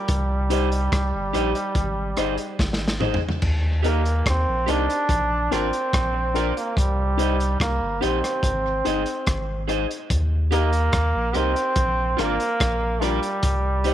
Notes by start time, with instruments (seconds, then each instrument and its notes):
Already playing: trombone G3
0.08 sub bass C2, kick, closed hi-hat
0.49 upright piano D#4 G4 C5, clean electric guitar G4 C5 D#5, closed hi-hat
0.72 closed hi-hat
0.92 sub bass C2, kick, cross-stick, closed hi-hat
1.14 sub bass G1
1.33 sub bass A#1, upright piano D#4 G4 C5, clean electric guitar G4 C5 D#5, closed hi-hat
1.55 muted clean electric guitar stroke, closed hi-hat
1.75 sub bass G#1, kick, closed hi-hat
2.17 sub bass G1, upright piano D#4 G#4 C5, clean electric guitar G#4 C5 D#5, cross-stick, closed hi-hat
2.38 closed hi-hat
2.59 sub bass G#1, kick, snare
2.73 snare
2.79 muted clean electric guitar stroke
2.88 snare
3.00 upright piano D#4 G#4 C5, clean electric guitar G#4 C5 D#5, mid tom
3.14 floor tom
3.29 floor tom
3.42 sub bass D#2, kick, crash
3.83 upright piano D#4 G4 A#4, clean electric guitar G4 A#4 D#5, closed hi-hat
3.87 trombone A#3
4.05 closed hi-hat
4.26 sub bass D#2, trombone C4, kick, cross-stick, closed hi-hat
4.48 sub bass A#1
4.66 sub bass C2, upright piano D#4 G4 A#4, clean electric guitar G4 A#4 D#5, closed hi-hat
4.70 trombone D4
4.89 muted clean electric guitar stroke, closed hi-hat
5.09 sub bass A#1, kick, closed hi-hat
5.51 sub bass G#1, trombone C4, upright piano D4 F4 A#4, clean electric guitar F4 A#4 D5, cross-stick, closed hi-hat
5.73 closed hi-hat
5.93 sub bass A#1, kick, cross-stick, closed hi-hat
6.14 muted clean electric guitar stroke
6.34 upright piano D4 F4 A#4, clean electric guitar F4 A#4 D5, closed hi-hat
6.57 trombone A#3, closed hi-hat
6.77 sub bass C2, trombone G3, kick, closed hi-hat
7.17 upright piano D#4 G4 C5, clean electric guitar G4 C5 D#5, closed hi-hat
7.40 closed hi-hat
7.60 sub bass C2, trombone A#3, kick, cross-stick, closed hi-hat
7.82 sub bass G1
8.01 sub bass A#1, trombone C4, upright piano D#4 G4 C5, clean electric guitar G4 C5 D#5, closed hi-hat
8.23 muted clean electric guitar stroke, cross-stick, closed hi-hat
8.43 sub bass G#1, kick, closed hi-hat
8.85 sub bass G1, upright piano D#4 G#4 C5, clean electric guitar G#4 C5 D#5, closed hi-hat
9.06 closed hi-hat
9.27 sub bass G#1, kick, cross-stick, closed hi-hat
9.68 upright piano D#4 G#4 C5, clean electric guitar G#4 C5 D#5, closed hi-hat
9.91 closed hi-hat
10.10 sub bass D#2, kick, closed hi-hat
10.51 trombone A#3, upright piano D#4 G4 A#4, clean electric guitar G4 A#4 D#5, closed hi-hat
10.73 closed hi-hat
10.93 sub bass D#2, kick, cross-stick, closed hi-hat
11.15 sub bass A#1
11.33 sub bass C2, trombone C4, upright piano D#4 G4 A#4, clean electric guitar G4 A#4 D#5, closed hi-hat
11.54 muted clean electric guitar stroke, closed hi-hat
11.76 sub bass A#1, kick, closed hi-hat
12.17 sub bass G#1, trombone A#3, upright piano D4 F4 A#4, clean electric guitar F4 A#4 D5, cross-stick, closed hi-hat
12.40 closed hi-hat
12.60 sub bass A#1, kick, cross-stick, closed hi-hat
12.81 muted clean electric guitar stroke
13.01 trombone G3, upright piano D4 F4 A#4, clean electric guitar F4 A#4 D5, closed hi-hat
13.23 closed hi-hat
13.43 sub bass C2, kick, closed hi-hat
13.84 upright piano D#4 G4 C5, clean electric guitar G4 C5 D#5, closed hi-hat